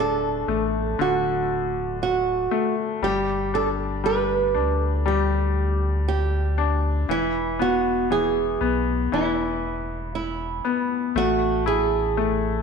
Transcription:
Already playing: sub bass D1, grand piano D3 A3 D4
0.00 nylon-string guitar A4
0.48 sub bass A1, grand piano A3
0.99 sub bass D1, grand piano D3, nylon-string guitar F#4
2.03 nylon-string guitar F#4
2.51 grand piano A3
3.02 sub bass G1, grand piano G3, nylon-string guitar G4
3.54 grand piano D4, nylon-string guitar A4
4.04 grand piano G3, nylon-string guitar B4
4.54 sub bass D2, grand piano D4
4.79 nylon-string guitar A4
5.06 grand piano G3, nylon-string guitar G4
6.08 nylon-string guitar G4
6.58 grand piano D4
7.08 sub bass E1, grand piano E3, nylon-string guitar E4
7.59 grand piano B3, nylon-string guitar F#4
8.10 grand piano E3, nylon-string guitar G#4
8.60 sub bass B1, grand piano B3
9.12 sub bass E1, grand piano E3, nylon-string guitar E4
10.15 nylon-string guitar E4
10.65 grand piano B3
11.15 sub bass A1, grand piano A3, nylon-string guitar F#4
11.66 grand piano E4, nylon-string guitar G#4
12.17 grand piano A3

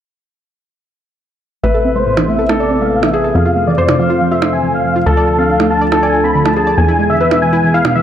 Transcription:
1.63 analog synth bass A1, analog synth pad C3 A3 B3 E4, synth pluck A3, felt piano B4, supersaw synth E5
1.74 analog synth pad C3 A3 B3 E4, synth pluck A4
1.85 analog synth pad C3 A3 B3 E4, synth pluck C4
1.96 synth pluck G#3, supersaw synth C5
2.06 synth pluck A2, analog synth pad C3 A3 B3 E4
2.17 analog synth pad C3 A3 B3 E4, synth pluck E3, percussion blips
2.28 analog synth pad C3 A3 B3 E4, synth pluck A3, supersaw synth E5
2.39 synth pluck A4
2.49 analog synth pad C3 A3 B3 E4, synth pluck A3, felt piano A4, percussion blips
2.60 synth pluck A4, supersaw synth D5
2.71 analog synth pad C3 A3 B3 E4, synth pluck C4
2.81 synth pluck G#3, supersaw synth F5
2.92 synth pluck A2, analog synth pad C3 A3 B3 E4
3.03 synth pluck E3, supersaw synth E5, percussion blips
3.13 analog synth pad C3 A3 B3 E4, synth pluck A3, felt piano G#4
3.24 synth pluck A4
3.35 analog synth bass F2, analog synth pad C3 F3 A3 F4, synth pluck F3, supersaw synth F5
3.46 analog synth pad C3 F3 A3 F4, synth pluck F4
3.56 analog synth pad C3 F3 A3 F4, synth pluck A3
3.67 synth pluck E3, supersaw synth D5
3.78 synth pluck F2, analog synth pad C3 F3 A3 F4, felt piano C5
3.89 synth pluck C3, analog synth pad C3 F3 A3 F4, percussion blips
3.99 analog synth pad C3 F3 A3 F4, synth pluck F3, supersaw synth F5
4.10 synth pluck F4
4.21 analog synth pad C3 F3 A3 F4, synth pluck F3
4.32 synth pluck F4, supersaw synth E5
4.42 analog synth pad C3 F3 A3 F4, synth pluck A3, percussion blips
4.53 synth pluck E3, supersaw synth G#5
4.64 synth pluck F2, analog synth pad C3 F3 A3 F4
4.74 synth pluck C3, supersaw synth F5
4.85 analog synth pad C3 F3 A3 F4, synth pluck F3
4.96 synth pluck F4
5.06 analog synth bass D2, analog synth pad D3 F3 A3 F4, synth pluck D4, felt piano A4, supersaw synth A5
5.17 analog synth pad D3 F3 A3 F4, synth pluck D5
5.28 analog synth pad D3 F3 A3 F4, synth pluck F4
5.38 synth pluck C4, supersaw synth F5
5.49 synth pluck D3, analog synth pad D3 F3 A3 F4
5.60 analog synth pad D3 F3 A3 F4, synth pluck A3, percussion blips
5.70 analog synth pad D3 F3 A3 F4, synth pluck D4, supersaw synth A5
5.81 synth pluck D5
5.92 analog synth pad D3 F3 A3 F4, synth pluck D4, felt piano A4, percussion blips
6.03 synth pluck D5, supersaw synth G#5
6.13 analog synth pad D3 F3 A3 F4, synth pluck F4
6.24 synth pluck C4, supersaw synth B5
6.35 synth pluck D3, analog synth pad D3 F3 A3 F4
6.46 synth pluck A3, supersaw synth A5, percussion blips
6.56 analog synth pad D3 F3 A3 F4, synth pluck D4, felt piano G#4
6.67 synth pluck D5
6.78 analog synth bass E2, analog synth pad B2 E3 G#3 E4, synth pluck E3, supersaw synth G#5
6.88 analog synth pad B2 E3 G#3 E4, synth pluck E4
6.99 analog synth pad B2 E3 G#3 E4, synth pluck G#3
7.10 synth pluck D3, supersaw synth E5
7.21 synth pluck E2, analog synth pad B2 E3 G#3 E4, felt piano B4
7.31 analog synth pad B2 E3 G#3 E4, synth pluck B2, percussion blips
7.42 analog synth pad B2 E3 G#3 E4, synth pluck E3, supersaw synth G#5
7.53 synth pluck E4
7.63 analog synth pad B2 E3 G#3 E4, synth pluck E3
7.74 synth pluck E4, supersaw synth F5
7.85 analog synth pad B2 E3 G#3 E4, synth pluck B2, percussion blips
7.95 synth pluck E3, supersaw synth E5

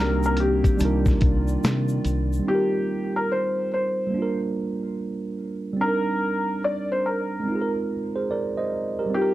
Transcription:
Already playing: fingered electric bass C2, ambient pad D#3 A#3 C4, tine electric piano G3 C4 D4 D#4 F#4 G4 A#4
0.00 felt piano A#4
0.23 felt piano A#4, shaker
0.37 felt piano G4, closed hi-hat
0.64 kick, closed hi-hat, shaker
0.77 fingered electric bass C2, ambient pad D#3 F4 D5, tine electric piano G3 D4 D#4, closed hi-hat, shaker
0.83 tine electric piano F4 A#4
1.06 kick, snare, shaker
1.21 fingered electric bass C2, kick, closed hi-hat
1.48 shaker
1.64 fingered electric bass C3, snare, closed hi-hat, shaker
1.89 shaker
2.05 fingered electric bass C2, closed hi-hat, shaker
2.33 shaker
2.40 tine electric piano G3 C4
2.47 tine electric piano D#4 F4, felt piano G4
2.55 tine electric piano A#4
3.16 felt piano A#4
3.32 felt piano C5
3.74 felt piano C5
4.07 tine electric piano G3 A#3
4.14 tine electric piano D4 F4
4.22 tine electric piano A#4
5.73 tine electric piano G3 C4
5.80 tine electric piano D4, felt piano A#4
5.84 tine electric piano D#4 A#4
6.64 felt piano D5
6.92 felt piano C5
7.06 felt piano A#4
7.40 tine electric piano G#3 C4
7.48 tine electric piano D#4
7.52 tine electric piano F4 G#4
7.62 tine electric piano A#4
8.16 tine electric piano G#4 C5
8.31 tine electric piano A#4 D5
8.57 tine electric piano C5 D#5
8.99 tine electric piano G4 A#4
9.06 tine electric piano G3 C4
9.14 tine electric piano D#4 F4, felt piano G4
9.22 tine electric piano A#4

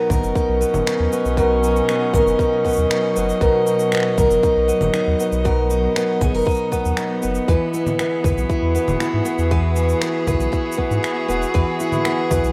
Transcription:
Already playing: steel-string acoustic guitar B2 B3 D#4, string quartet B2 F#3 A#5
0.00 string quartet D#5
0.10 sub bass B1, steel-string acoustic guitar A#4, kick, low conga, shaker
0.17 string quartet C#4
0.24 sub bass F#1, shaker
0.35 steel-string acoustic guitar D#4, kick, shaker
0.49 sub bass B1
0.61 steel-string acoustic guitar B3, shaker
0.74 sub bass F#1, low conga, shaker
0.86 steel-string acoustic guitar D#4, finger snap, shaker
1.00 sub bass D#2
1.13 steel-string acoustic guitar B3, shaker
1.25 sub bass B1, shaker
1.37 steel-string acoustic guitar B2 A#4, kick, shaker
1.64 steel-string acoustic guitar D#4, shaker
1.76 shaker
1.89 steel-string acoustic guitar B3, finger snap, shaker
2.14 sub bass B1, steel-string acoustic guitar A#4, kick, low conga, shaker
2.26 sub bass F#1, shaker
2.39 steel-string acoustic guitar D#4, kick, shaker
2.65 steel-string acoustic guitar B3, kick, shaker
2.68 shaker
2.70 shaker
2.73 shaker
2.76 sub bass D#2, shaker
2.78 shaker
2.90 steel-string acoustic guitar D#4, finger snap, shaker
3.16 sub bass F#1, steel-string acoustic guitar B3, shaker
3.29 shaker
3.41 sub bass B1, steel-string acoustic guitar B2 A#4, kick, shaker
3.66 steel-string acoustic guitar D#4, shaker
3.79 shaker
3.92 steel-string acoustic guitar B3, finger snap, shaker
3.95 finger snap
3.97 finger snap
4.00 finger snap
4.03 finger snap
4.18 sub bass B1, steel-string acoustic guitar A#4, kick, low conga, shaker
4.30 sub bass F#1, shaker
4.43 steel-string acoustic guitar D#4, kick, shaker
4.52 string quartet B3
4.57 sub bass B1
4.68 steel-string acoustic guitar B3, shaker
4.81 sub bass F#1, low conga, shaker
4.94 steel-string acoustic guitar D#4, finger snap, shaker
5.08 sub bass D#2
5.20 steel-string acoustic guitar B3, shaker
5.32 sub bass B1, shaker
5.45 steel-string acoustic guitar B2 A#4, kick, shaker
5.70 steel-string acoustic guitar D#4, shaker
5.96 steel-string acoustic guitar B3, finger snap, shaker
6.21 sub bass B1, steel-string acoustic guitar G#4, kick, low conga, shaker
6.34 sub bass F#1, steel-string acoustic guitar A#4, shaker
6.38 shaker
6.41 shaker
6.45 steel-string acoustic guitar D#4, kick, shaker
6.48 shaker
6.50 shaker
6.54 shaker
6.57 shaker
6.72 steel-string acoustic guitar B3, kick, shaker
6.85 sub bass D#2, shaker
6.97 steel-string acoustic guitar D#4, finger snap, shaker
7.22 sub bass F#1, steel-string acoustic guitar B3, shaker
7.35 shaker
7.48 sub bass E2, string quartet E3, steel-string acoustic guitar E3 B4, kick, shaker
7.74 steel-string acoustic guitar E4, shaker
7.86 low conga, shaker
7.99 steel-string acoustic guitar B3, finger snap, shaker
8.10 string quartet G#4
8.24 sub bass E2, steel-string acoustic guitar B4, kick, low conga, shaker
8.29 string quartet F#4
8.38 sub bass B1, shaker
8.49 steel-string acoustic guitar E4, kick, shaker
8.62 sub bass E2
8.75 steel-string acoustic guitar B3, shaker
8.88 sub bass E1, low conga, shaker
9.00 steel-string acoustic guitar E4, finger snap, shaker
9.14 sub bass G#2
9.25 steel-string acoustic guitar B3, shaker
9.38 sub bass E2, shaker
9.51 steel-string acoustic guitar E3 B4, kick, shaker
9.76 steel-string acoustic guitar E4, shaker
9.89 shaker
10.02 steel-string acoustic guitar B3, finger snap, shaker
10.27 sub bass E2, steel-string acoustic guitar B4, kick, low conga, shaker
10.40 sub bass B1, shaker
10.52 steel-string acoustic guitar E4, kick, shaker
10.72 shaker
10.77 steel-string acoustic guitar B3, kick
10.91 sub bass G#2, shaker
11.03 steel-string acoustic guitar E4, finger snap, shaker
11.28 sub bass E1, steel-string acoustic guitar B3, shaker
11.42 shaker
11.54 sub bass E2, steel-string acoustic guitar E3 B4, kick, shaker
11.80 steel-string acoustic guitar E4, shaker
11.92 low conga, shaker
12.05 steel-string acoustic guitar B3, finger snap, shaker
12.31 sub bass E2, steel-string acoustic guitar B4, kick, low conga, shaker
12.44 sub bass B1, shaker

